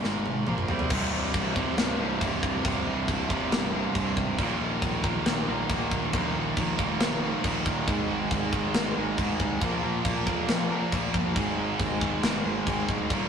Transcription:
0.03 picked electric bass G#1, distorted electric guitar G#2 D#3 G#3, snare
0.26 high tom
0.47 picked electric bass A#1, distorted electric guitar A#2 F3 A#3, mid tom
0.58 mid tom
0.68 picked electric bass C2, distorted electric guitar C3 G3 C4, floor tom
0.79 floor tom
0.90 picked electric bass C1, distorted electric guitar C2 G2 C3, kick, crash
1.12 picked electric bass C1, distorted electric guitar C2 G2 C3
1.34 picked electric bass C1, distorted electric guitar C2 G2 C3, kick, crash
1.56 distorted electric guitar C2 G2 C3, kick
1.77 picked electric bass C1, distorted electric guitar C2 G2 C3, snare, crash
1.99 picked electric bass C1, distorted electric guitar C2 G2 C3
2.21 picked electric bass C1, distorted electric guitar C2 G2 C3, kick, crash
2.43 picked electric bass C1, distorted electric guitar C2 G2 C3, kick
2.65 picked electric bass C1, distorted electric guitar C2 G2 C3, kick, crash
2.86 distorted electric guitar C2 G2 C3, picked electric bass C2
3.08 picked electric bass C1, distorted electric guitar C2 G2 C3, kick, crash
3.30 picked electric bass G1, distorted electric guitar C2 G2 C3, kick
3.52 picked electric bass G1, distorted electric guitar C2 G2 C3, snare, crash
3.74 distorted electric guitar C2 G2 C3
3.95 picked electric bass C1, distorted electric guitar C2 G2 C3, kick, crash
4.17 picked electric bass G#1, distorted electric guitar C2 G2 C3, kick
4.38 picked electric bass A#1, distorted electric guitar D#2 A#2 D#3, kick, crash
4.60 picked electric bass A#1, distorted electric guitar D#2 A#2 D#3
4.82 picked electric bass A#1, distorted electric guitar D#2 A#2 D#3, kick, crash
5.04 distorted electric guitar D#2 A#2 D#3, kick
5.26 picked electric bass A#1, distorted electric guitar D#2 A#2 D#3, snare, crash
5.48 picked electric bass A#1, distorted electric guitar D#2 A#2 D#3
5.69 picked electric bass A#1, distorted electric guitar D#2 A#2 D#3, kick, crash
5.91 picked electric bass A#1, distorted electric guitar D#2 A#2 D#3, kick
6.13 picked electric bass A#1, distorted electric guitar D#2 A#2 D#3, kick, crash
6.36 picked electric bass A#1, distorted electric guitar D#2 A#2 D#3
6.57 picked electric bass A#1, distorted electric guitar D#2 A#2 D#3, kick, crash
6.78 picked electric bass F1, distorted electric guitar D#2 A#2 D#3, kick
7.00 picked electric bass F1, distorted electric guitar D#2 A#2 D#3, snare, crash
7.23 distorted electric guitar D#2 A#2 D#3
7.44 picked electric bass A#1, distorted electric guitar D#2 A#2 D#3, kick, crash
7.66 picked electric bass A#1, distorted electric guitar D#2 A#2 D#3, kick
7.88 picked electric bass G#1, distorted electric guitar G#2 D#3 G#3, kick, crash
8.10 picked electric bass G#1, distorted electric guitar G#2 D#3 G#3
8.31 picked electric bass G#1, distorted electric guitar G#2 D#3 G#3, kick, crash
8.53 distorted electric guitar G#2 D#3 G#3, kick
8.74 picked electric bass G#1, distorted electric guitar G#2 D#3 G#3, snare, crash
8.97 picked electric bass G#1, distorted electric guitar G#2 D#3 G#3
9.18 picked electric bass G#1, distorted electric guitar G#2 D#3 G#3, kick, crash
9.40 picked electric bass C2, distorted electric guitar G#2 D#3 G#3, kick
9.61 picked electric bass A#1, distorted electric guitar A#2 F3 A#3, kick, crash
9.82 distorted electric guitar A#2 F3 A#3, picked electric bass A#2
10.05 picked electric bass A#1, distorted electric guitar A#2 F3 A#3, kick, crash
10.27 picked electric bass F2, distorted electric guitar A#2 F3 A#3, kick
10.48 picked electric bass F2, distorted electric guitar A#2 F3 A#3, snare, crash
10.71 distorted electric guitar A#2 F3 A#3
10.92 picked electric bass A#1, distorted electric guitar A#2 F3 A#3, kick, crash
11.14 picked electric bass G1, distorted electric guitar A#2 F3 A#3, kick
11.36 picked electric bass G#1, distorted electric guitar G#2 D#3 G#3, kick, crash
11.57 picked electric bass G#1, distorted electric guitar G#2 D#3 G#3
11.80 picked electric bass G#1, distorted electric guitar G#2 D#3 G#3, kick, crash
12.01 distorted electric guitar G#2 D#3 G#3, kick
12.23 picked electric bass G#1, distorted electric guitar G#2 D#3 G#3, snare, crash
12.45 picked electric bass G#1, distorted electric guitar G#2 D#3 G#3
12.67 picked electric bass G#1, distorted electric guitar G#2 D#3 G#3, kick, crash
12.89 picked electric bass D1, distorted electric guitar G#2 D#3 G#3, kick
13.10 picked electric bass D#1, distorted electric guitar D#2 A#2 D#3, kick, crash

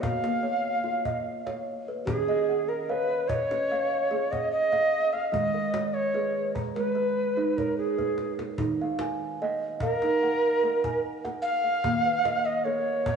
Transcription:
Already playing: kalimba D#3 C#5
0.01 kalimba B3, native american-style wooden flute F5, cajon bass
0.23 kalimba A#3, cajon slap
0.43 kalimba C#5
0.84 kalimba F4, cajon slap
1.05 kalimba D#5, cajon bass
1.46 kalimba C#5, cajon slap
1.88 kalimba B4
2.05 kalimba D#3 C#4, native american-style wooden flute G#4, cajon bass
2.28 kalimba D#5, cajon slap
2.49 kalimba F#5
2.69 native american-style wooden flute A#4
2.89 native american-style wooden flute B4, kalimba C#5 F5
3.28 native american-style wooden flute C#5, kalimba D#5, cajon bass
3.51 kalimba C#4, cajon slap
3.71 kalimba F5
4.11 kalimba G#4, cajon slap
4.31 native american-style wooden flute D#5, kalimba F#5, cajon bass
4.51 native american-style wooden flute D#5
4.72 kalimba F5, cajon slap
5.13 kalimba D#5, native american-style wooden flute F5
5.32 kalimba D#3 G#3, native american-style wooden flute D#5, cajon bass
5.54 kalimba A#4
5.73 kalimba C#5, cajon slap
5.94 native american-style wooden flute C#5, cajon slap
6.14 kalimba G#4 B4, cajon slap
6.55 kalimba A#5, cajon bass
6.75 kalimba G#3, native american-style wooden flute B4, cajon slap
6.95 kalimba B4, cajon slap
7.37 kalimba D#4
7.57 native american-style wooden flute A#4, kalimba C#5, cajon bass
7.78 native american-style wooden flute G#4, cajon slap
7.98 kalimba B4, cajon bass
8.18 cajon slap
8.39 kalimba A#4, cajon slap
8.58 kalimba D#3 D#4, cajon bass
8.79 kalimba F5, cajon slap
8.99 kalimba G#5, cajon slap
9.42 kalimba D#5 F#5
9.80 native american-style wooden flute A#4, kalimba F5, cajon bass
10.02 kalimba D#4, cajon slap
10.23 kalimba F#5
10.63 kalimba A#4, cajon slap
10.84 kalimba G#5, cajon bass
11.25 kalimba F#5, cajon slap
11.42 native american-style wooden flute F5
11.64 kalimba F5
11.84 kalimba D#3 A#3, cajon bass
12.05 kalimba B4, cajon slap
12.25 kalimba D#5, cajon slap
12.46 native american-style wooden flute D#5
12.64 kalimba A#4 C#5, native american-style wooden flute C#5
13.06 kalimba B3, cajon bass

